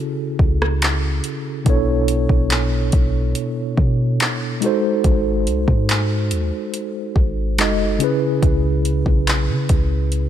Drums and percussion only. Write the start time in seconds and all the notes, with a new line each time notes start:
0.39 kick
0.62 cross-stick
0.82 clap, closed hi-hat
1.24 closed hi-hat
1.66 kick, closed hi-hat
2.08 closed hi-hat
2.29 kick
2.50 clap, closed hi-hat
2.92 kick, closed hi-hat
3.35 closed hi-hat
3.77 kick
4.20 clap, closed hi-hat
4.62 closed hi-hat
5.04 kick, closed hi-hat
5.47 closed hi-hat
5.68 kick
5.89 clap, closed hi-hat
6.31 closed hi-hat
6.74 closed hi-hat
7.16 kick
7.58 clap, closed hi-hat
8.00 closed hi-hat
8.43 kick, closed hi-hat
8.85 closed hi-hat
9.06 kick
9.27 clap, closed hi-hat
9.69 kick, closed hi-hat
10.12 closed hi-hat